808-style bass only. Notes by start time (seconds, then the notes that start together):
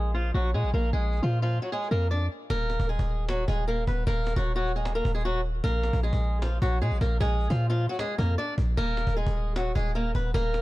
Already playing: A#1
0.34 A#1
0.54 A#2
0.64 A#1
0.74 A#1
0.93 A#1
1.23 A#2
1.91 F2
2.50 D#1
2.80 D#1
2.99 D#1
3.48 D#1
3.87 D#1
4.07 D#1
4.36 D#1
5.05 D#1
5.64 A#1
5.93 A#1
6.13 A#1
6.62 A#1
6.81 A#2
6.91 A#1
7.01 A#1
7.21 A#1
7.50 A#2
8.19 F2
8.58 A#1
8.77 D#1
9.07 D#1
9.27 D#1
9.76 D#1
10.15 D#1
10.34 D#1